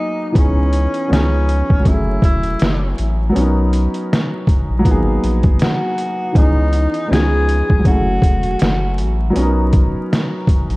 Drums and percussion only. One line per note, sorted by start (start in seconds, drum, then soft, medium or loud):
0.35 kick loud
0.35 closed hi-hat medium
0.73 closed hi-hat medium
0.94 closed hi-hat soft
1.13 snare medium
1.13 closed hi-hat medium
1.49 closed hi-hat medium
1.70 kick medium
1.85 kick medium
1.85 closed hi-hat medium
2.22 kick medium
2.22 closed hi-hat medium
2.43 closed hi-hat soft
2.60 snare loud
2.60 closed hi-hat medium
2.98 closed hi-hat medium
3.36 closed hi-hat medium
3.73 closed hi-hat medium
3.94 closed hi-hat soft
4.13 snare loud
4.13 closed hi-hat medium
4.47 kick medium
4.47 closed hi-hat medium
4.85 kick medium
4.85 closed hi-hat medium
5.24 closed hi-hat medium
5.43 kick medium
5.43 closed hi-hat soft
5.59 snare loud
5.59 closed hi-hat medium
5.98 closed hi-hat medium
6.35 kick loud
6.35 closed hi-hat medium
6.73 closed hi-hat medium
6.94 closed hi-hat soft
7.13 snare loud
7.13 closed hi-hat medium
7.49 closed hi-hat medium
7.70 kick medium
7.85 kick medium
7.85 closed hi-hat medium
8.22 kick medium
8.22 closed hi-hat medium
8.43 closed hi-hat soft
8.59 snare loud
8.59 closed hi-hat medium
8.98 closed hi-hat medium
9.36 closed hi-hat medium
9.73 kick medium
9.73 closed hi-hat medium
10.13 snare medium
10.13 closed hi-hat medium
10.47 kick medium
10.47 closed hi-hat medium
10.70 closed hi-hat soft